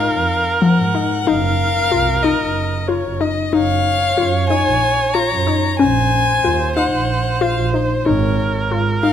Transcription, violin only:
0.00 0.61 F5 medium
0.62 1.28 F#5 medium
1.26 2.24 F5 loud
2.22 2.89 D#5 medium
2.88 3.22 C#5 medium
3.20 3.54 D#5 medium
3.53 4.48 F5 loud
4.49 5.15 G#5 loud
5.13 5.79 A#5 medium
5.79 6.72 G#5 loud
6.76 7.42 F#5 medium
7.41 7.73 F5 medium
7.73 8.06 C5 medium
8.05 8.70 C#5 medium
9.03 9.13 F5 loud

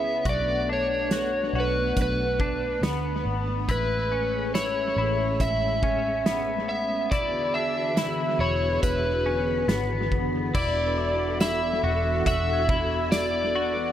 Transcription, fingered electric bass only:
0.00 0.21 C#2 medium
0.25 1.50 B1 medium
1.53 1.94 B1 medium
1.96 2.78 B1 medium
2.82 3.23 D2 medium
3.25 3.66 G#1 medium
3.68 4.93 A1 medium
4.96 5.37 A1 medium
5.40 7.12 A1 medium
7.12 8.36 E1 loud
8.39 8.80 E1 medium
8.82 9.64 E1 medium
9.68 10.11 G#1 medium
10.11 10.52 F#1 medium
10.55 11.79 E1 loud
11.83 12.24 E1 medium
12.26 13.92 E1 loud

